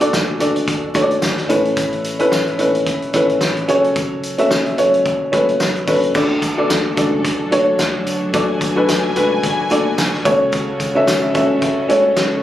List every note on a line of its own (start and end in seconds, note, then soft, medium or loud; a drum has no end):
0.00 1.51 D3 medium
0.00 0.40 D4 medium
0.00 0.40 F#4 medium
0.00 0.41 A4 medium
0.00 0.41 D5 medium
0.00 closed hi-hat soft
0.13 0.36 D2 loud
0.13 snare loud
0.13 tambourine medium
0.40 0.75 D2 loud
0.40 0.84 D4 medium
0.40 0.84 F#4 medium
0.40 0.85 A4 medium
0.40 0.85 D5 medium
0.40 closed hi-hat medium
0.40 tambourine soft
0.56 closed hi-hat soft
0.68 kick medium
0.68 closed hi-hat medium
0.94 1.17 D2 medium
0.94 1.39 D4 medium
0.94 1.39 F#4 medium
0.94 1.39 A4 medium
0.94 1.03 C#5 medium
0.94 kick medium
0.94 closed hi-hat medium
0.94 tambourine soft
1.02 1.43 D5 medium
1.11 closed hi-hat soft
1.22 1.45 D2 loud
1.22 snare loud
1.22 tambourine medium
1.37 snare soft
1.37 closed hi-hat soft
1.49 2.17 A1 medium
1.49 2.28 A2 medium
1.49 2.04 C#4 medium
1.49 2.04 E4 medium
1.49 2.05 A4 medium
1.49 2.05 B4 medium
1.49 closed hi-hat medium
1.49 tambourine medium
1.65 closed hi-hat soft
1.77 kick loud
1.77 closed hi-hat medium
1.77 tambourine medium
1.93 closed hi-hat soft
2.04 closed hi-hat medium
2.04 tambourine medium
2.19 2.51 C#4 medium
2.19 2.51 E4 medium
2.19 2.51 A4 medium
2.19 2.52 B4 medium
2.19 closed hi-hat soft
2.32 2.54 A1 medium
2.32 snare medium
2.32 tambourine medium
2.47 closed hi-hat soft
2.58 2.94 A1 loud
2.58 3.03 C#4 medium
2.58 3.03 E4 medium
2.58 3.03 A4 medium
2.58 3.04 B4 medium
2.58 closed hi-hat medium
2.58 tambourine soft
2.75 closed hi-hat soft
2.86 kick medium
2.86 closed hi-hat medium
2.86 tambourine soft
3.02 closed hi-hat soft
3.13 3.36 A1 medium
3.13 3.58 C#4 medium
3.13 3.58 E4 medium
3.13 3.58 A4 medium
3.13 3.59 B4 medium
3.13 kick medium
3.13 closed hi-hat medium
3.13 tambourine soft
3.29 closed hi-hat soft
3.41 3.64 A1 loud
3.41 snare loud
3.41 tambourine medium
3.57 closed hi-hat soft
3.68 4.36 F#1 medium
3.68 4.23 C#4 medium
3.68 4.23 F#4 medium
3.68 3.76 G#4 medium
3.68 4.24 C#5 medium
3.68 closed hi-hat medium
3.68 tambourine medium
3.75 4.27 A4 medium
3.84 closed hi-hat soft
3.96 kick loud
3.96 closed hi-hat medium
3.96 tambourine soft
4.23 closed hi-hat medium
4.23 tambourine medium
4.38 4.70 C#4 medium
4.38 4.70 F#4 medium
4.38 4.70 A4 medium
4.38 4.71 E5 medium
4.38 closed hi-hat soft
4.51 4.73 F#1 loud
4.51 snare loud
4.51 tambourine medium
4.66 closed hi-hat soft
4.78 5.14 F#1 medium
4.78 5.22 C#4 medium
4.78 5.22 F#4 medium
4.78 5.22 A4 medium
4.78 5.23 C#5 medium
4.78 closed hi-hat medium
4.78 tambourine soft
4.94 closed hi-hat soft
5.06 kick medium
5.06 closed hi-hat medium
5.06 tambourine soft
5.32 5.55 F#1 loud
5.32 5.77 C#4 medium
5.32 5.77 F#4 medium
5.32 5.77 A4 medium
5.32 5.77 B4 medium
5.32 kick medium
5.32 closed hi-hat medium
5.49 closed hi-hat soft
5.60 5.83 F#1 loud
5.60 snare loud
5.60 tambourine medium
5.76 closed hi-hat soft
5.87 6.10 F#1 medium
5.87 6.10 C#4 medium
5.87 6.10 F#4 medium
5.87 6.10 A4 medium
5.87 6.10 B4 medium
5.87 kick loud
5.87 open hi-hat medium
5.87 tambourine medium
6.03 closed hi-hat soft
6.14 6.37 D2 loud
6.14 6.93 D3 medium
6.14 10.21 F#3 medium
6.14 10.21 D4 medium
6.14 6.47 D4 medium
6.14 12.43 F#4 medium
6.14 6.48 F#4 medium
6.14 8.32 A4 medium
6.14 6.48 A4 medium
6.14 6.48 D5 medium
6.14 kick loud
6.14 crash medium
6.14 tambourine medium
6.42 6.65 D2 medium
6.42 kick medium
6.42 closed hi-hat medium
6.42 tambourine medium
6.57 6.89 D4 medium
6.57 6.89 F#4 medium
6.57 6.89 A4 medium
6.57 6.90 D5 medium
6.70 6.92 D2 loud
6.70 snare loud
6.70 closed hi-hat medium
6.70 tambourine medium
6.96 7.32 C#2 medium
6.96 7.41 D4 medium
6.96 7.41 F#4 medium
6.96 7.41 A4 medium
6.96 7.41 D5 medium
6.96 kick medium
6.96 closed hi-hat medium
6.96 tambourine soft
7.24 kick medium
7.24 closed hi-hat medium
7.24 tambourine soft
7.51 7.74 D2 loud
7.51 8.17 D4 medium
7.51 8.17 F#4 medium
7.51 8.17 A4 medium
7.51 8.17 C#5 medium
7.51 closed hi-hat medium
7.79 8.02 D2 loud
7.79 snare loud
7.79 closed hi-hat medium
7.79 tambourine medium
8.06 8.29 D2 medium
8.06 closed hi-hat medium
8.06 tambourine medium
8.33 8.56 D2 loud
8.33 9.12 D3 medium
8.33 8.66 D4 medium
8.33 8.66 F#4 medium
8.33 8.66 A4 medium
8.33 8.67 D5 medium
8.33 10.24 G#5 medium
8.33 kick loud
8.33 closed hi-hat medium
8.33 tambourine soft
8.61 8.84 D2 loud
8.61 kick medium
8.61 closed hi-hat medium
8.61 tambourine soft
8.76 9.08 D4 medium
8.76 9.08 F#4 medium
8.76 9.08 A4 medium
8.76 9.08 B4 medium
8.89 9.11 D2 loud
8.89 snare loud
8.89 closed hi-hat medium
8.89 tambourine medium
9.15 9.51 C#2 medium
9.15 9.60 D4 medium
9.15 9.60 F#4 medium
9.15 9.60 A4 medium
9.15 9.61 B4 medium
9.15 closed hi-hat medium
9.15 tambourine soft
9.43 kick medium
9.43 closed hi-hat medium
9.43 tambourine soft
9.70 9.93 D2 loud
9.70 10.25 D4 medium
9.70 10.24 F#4 medium
9.70 10.24 A4 medium
9.70 10.26 D5 medium
9.70 closed hi-hat medium
9.70 tambourine soft
9.98 10.20 D2 loud
9.98 snare loud
9.98 closed hi-hat medium
9.98 tambourine medium
10.13 snare soft
10.25 10.70 C#2 medium
10.25 11.04 C#3 medium
10.25 12.43 C#3 medium
10.25 10.80 C#4 medium
10.25 12.43 C#4 medium
10.25 10.80 F#4 medium
10.25 10.80 A4 medium
10.25 12.43 A4 medium
10.25 10.81 C#5 medium
10.25 kick loud
10.25 closed hi-hat medium
10.25 tambourine medium
10.52 kick loud
10.52 closed hi-hat medium
10.52 tambourine soft
10.80 11.03 C#2 loud
10.80 kick medium
10.80 closed hi-hat medium
10.80 tambourine medium
10.95 11.27 C#4 medium
10.95 11.27 F#4 medium
10.95 11.27 A4 medium
10.95 11.27 E5 loud
11.07 11.30 C#2 loud
11.07 snare loud
11.07 closed hi-hat medium
11.07 tambourine medium
11.34 11.70 C#2 medium
11.34 11.79 C#4 medium
11.34 11.79 F#4 medium
11.34 11.79 A4 medium
11.34 11.79 E5 medium
11.34 kick medium
11.34 closed hi-hat medium
11.34 tambourine soft
11.62 kick medium
11.62 closed hi-hat medium
11.89 12.12 C#2 loud
11.89 12.43 C#4 medium
11.89 12.43 F#4 medium
11.89 12.43 A4 medium
11.89 12.43 C#5 medium
11.89 closed hi-hat medium
12.16 12.39 C#2 loud
12.16 snare loud
12.16 closed hi-hat medium
12.16 tambourine medium